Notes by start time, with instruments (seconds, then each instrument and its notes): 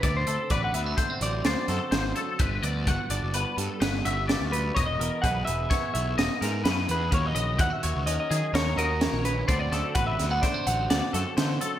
Already playing: clean electric guitar F#3 F#4 B4
0.03 picked electric bass D2, clean electric guitar D3 D5, kick, closed hi-hat
0.17 clean electric guitar C5
0.27 picked electric bass D2, clean electric guitar C4 A4, closed hi-hat
0.50 picked electric bass A1, clean electric guitar F#4 B4 D5, kick, closed hi-hat
0.64 clean electric guitar F#5
0.74 picked electric bass D2, clean electric guitar B3 E5, closed hi-hat
0.86 clean electric guitar D4
0.97 clean electric guitar A3 C5, kick, closed hi-hat
1.10 clean electric guitar C4
1.21 picked electric bass A1, clean electric guitar F#3 D5, closed hi-hat
1.44 picked electric bass D2, clean electric guitar C4 C5 D5, snare, closed hi-hat
1.68 picked electric bass F#2, clean electric guitar F#4 A4, snare, closed hi-hat
1.91 picked electric bass G#1, clean electric guitar E3 C5, snare, closed hi-hat
2.15 clean electric guitar F#3 A4, closed hi-hat
2.39 picked electric bass G1, clean electric guitar G2 B4, kick, closed hi-hat
2.63 picked electric bass D2, clean electric guitar B3 D5, closed hi-hat
2.87 picked electric bass G1, clean electric guitar F#4 F#5, kick, closed hi-hat
3.10 picked electric bass G1, clean electric guitar D4 D5, closed hi-hat
3.23 picked electric bass F#1
3.34 picked electric bass G1, clean electric guitar B3 B4, closed hi-hat
3.57 picked electric bass G2, clean electric guitar G3 A4, closed hi-hat
3.80 picked electric bass G1, clean electric guitar B3 B4, snare, closed hi-hat
4.05 picked electric bass G1, clean electric guitar F#4 E5, closed hi-hat
4.28 clean electric guitar G2 D5, snare, closed hi-hat
4.41 picked electric bass D2
4.52 clean electric guitar F#2 B4, closed hi-hat
4.75 picked electric bass E1, clean electric guitar E2 C#5 D#5, kick, closed hi-hat
4.86 clean electric guitar D#5
4.99 picked electric bass E1, clean electric guitar B3 A#4, closed hi-hat
5.22 picked electric bass B1, clean electric guitar G#4 B4 F#5, kick, closed hi-hat
5.45 picked electric bass E1, clean electric guitar G#4 E5, closed hi-hat
5.70 clean electric guitar B3 C#5, kick, snare, closed hi-hat
5.94 picked electric bass B1, clean electric guitar E3 E5, closed hi-hat
6.18 picked electric bass E1, clean electric guitar B3 D#5, snare, closed hi-hat
6.41 picked electric bass G#2, clean electric guitar G#4 A#4, snare, closed hi-hat
6.64 clean electric guitar E2 B4, picked electric bass F#2, snare, closed hi-hat
6.88 picked electric bass E2, clean electric guitar B3 G#4 B4, closed hi-hat
7.11 picked electric bass D#2, clean electric guitar D#3 F#3 C#4 F#4 A#4 C#5, kick, closed hi-hat
7.26 clean electric guitar D#5
7.34 picked electric bass A#1, clean electric guitar C#4 D#5, closed hi-hat
7.58 picked electric bass D#2, clean electric guitar E4 F#5, kick, closed hi-hat
7.70 clean electric guitar F#4 E5
7.83 picked electric bass D#2, clean electric guitar F#4 C#5, closed hi-hat
7.96 picked electric bass C#2
8.06 picked electric bass D#2, clean electric guitar C#4 A#4 D#5, closed hi-hat
8.20 clean electric guitar D#5
8.30 picked electric bass D#3, clean electric guitar F#3 G#4, closed hi-hat
8.53 picked electric bass D#2, clean electric guitar C#4 A#4 C#5, snare, closed hi-hat
8.77 picked electric bass D#2, clean electric guitar F#4 A#4 D#5, closed hi-hat
9.00 clean electric guitar D#3 C#5, snare, closed hi-hat
9.13 picked electric bass A#1
9.25 clean electric guitar C#4 B4, closed hi-hat
9.48 picked electric bass D2, clean electric guitar D3 F#3 C4 D4 F#4 C5 D5, kick, closed hi-hat
9.59 clean electric guitar D5
9.72 picked electric bass D2, clean electric guitar C4 A4, snare, closed hi-hat
9.95 picked electric bass A1, clean electric guitar F#4 B4 F#5, kick, closed hi-hat
10.07 clean electric guitar E5
10.18 picked electric bass D2, clean electric guitar B3, snare, closed hi-hat
10.31 clean electric guitar D4 F#5
10.42 clean electric guitar A3 C5 D5, kick, snare, closed hi-hat
10.54 clean electric guitar C4
10.66 picked electric bass A1, clean electric guitar F#3 F#5, closed hi-hat
10.90 picked electric bass D2, clean electric guitar C4 D5, snare, closed hi-hat
11.13 picked electric bass F#2, clean electric guitar F#4 A4, closed hi-hat
11.37 picked electric bass D3, clean electric guitar E3 C5, snare, closed hi-hat
11.61 clean electric guitar F#3 A4, closed hi-hat